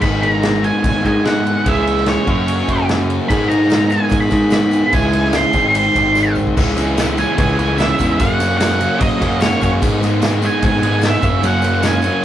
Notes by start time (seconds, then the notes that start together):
0.01 G#1 G#2 D#3 G#3 B3 D#4 G#4 B5, kick, crash
0.23 A#5, ride
0.43 snare, ride
0.64 G#5, ride
0.83 G#1, kick, ride
1.02 G#2 D#3 G#3 B3 D#4 G#4 G#5, kick, ride
1.23 G#2 D#3 G#3 B3 D#4 G#4 F#5, snare, ride
1.47 ride
1.64 C#2 C#3 E3 G#3 C#4 E4 G#4 E5, kick, ride
1.87 ride
1.97 snare
2.06 C#5, snare, ride
2.26 F#2 C#3 F#3 A#3 C#4 F#4 A#4, kick, ride
2.48 ride
2.68 F#2, kick, ride
2.89 snare, ride
3.10 ride
3.28 G#2 D#3 G#3 B3 D#4 G#4 B5, kick, ride, tambourine
3.49 A#5, ride, tambourine
3.63 snare
3.70 snare, ride, tambourine
3.90 G#5, ride, tambourine
4.09 G#2, kick, ride, tambourine
4.20 B5
4.30 G#2 D#3 G#3 B3 D#4 G#4, kick, ride, tambourine
4.50 G#2 D#3 G#3 B3 D#4 G#4 B5, snare, ride, tambourine
4.71 ride, tambourine
4.91 C#2 C#3 G#3 C#4 E4 G#4 G#5, kick, ride, tambourine
5.12 ride, tambourine
5.24 snare
5.33 C6, snare, ride, tambourine
5.53 G#1 G#2 D#3 G#3 C4 D#4 G#4, kick, ride, tambourine
5.75 C6, ride, tambourine
5.95 G#1, kick, ride, tambourine
6.15 snare, tambourine
6.35 mid tom, tambourine
6.47 kick
6.56 C#2 C#3 E3 G#3 C#4 E4 G#4 E5, kick, crash, tambourine
6.76 C#3 E3 G#3 C#4 E4, ride, tambourine
6.97 C#3 E3 G#3 C#4 E4, snare, ride, tambourine
7.16 C#3 E3 G#3 C#4 E4 G#5, ride, tambourine
7.38 C#2 C#3 E3 G#3 C#4 E4 G#5, kick, ride
7.57 C#2 C#3 E3 G#3 C#4 E4, ride, tambourine
7.78 C#3 E3 G#3 C#4 E4 E5, snare, ride, tambourine
7.98 E2 C#3 E3 G#3 C#4 E4, kick, ride, tambourine
8.18 F#2 C#3 F#3 A#3 C#4 F#4 A#4 C#5 F#5, kick, ride, tambourine
8.38 F#2 C#3 F#3 A#3 C#4 F#4, ride, tambourine
8.58 F#2 C#3 F#3 A#3 C#4 F#4 F#5, snare, ride, tambourine
8.79 F#2 C#3 F#3 A#3 C#4 F#4, ride, tambourine
8.98 F#2 C#3 F#3 A#3 C#4 F#4 D#5, kick, ride
9.21 F#2 C#3 F#3 A#3 C#4 F#4, kick, ride, tambourine
9.40 F#2 C#3 F#3 A#3 C#4 F#4 C#5, snare, ride, tambourine
9.61 F#2 C#3 F#3 A#3 C#4 F#4, kick, ride, tambourine
9.82 G#2 D#3 G#3 B3 D#4 G#4 B4 D#5, kick, ride, tambourine
10.02 G#2 D#3 G#3 B3 D#4 G#4, snare, ride, tambourine
10.22 G#2 D#3 G#3 B3 D#4 G#4, snare, ride, tambourine
10.42 G#2 D#3 G#3 B3 D#4 G#4, ride, tambourine
10.46 G#5
10.62 G#2 D#3 G#3 B3 D#4 G#4 G#5, kick, ride
10.82 G#2 D#3 G#3 B3 D#4 G#4, ride, tambourine
11.01 G#2 D#3 G#3 B3 D#4 G#4, snare, ride, tambourine
11.07 E5
11.14 snare
11.22 F#2 C#3 F#3 A#3 C#4 F#4 A#4 C#5, kick, ride, tambourine
11.42 F#2 C#3 F#3 A#3 C#4 F#4 F#5, ride, tambourine
11.62 F#2 C#3 F#3 A#3 C#4 F#4, snare, ride, tambourine
11.83 F#2 C#3 F#3 A#3 C#4 F#4 G#5, snare, ride, tambourine
12.02 F#2 C#3 F#3 A#3 C#4 F#4, ride, tambourine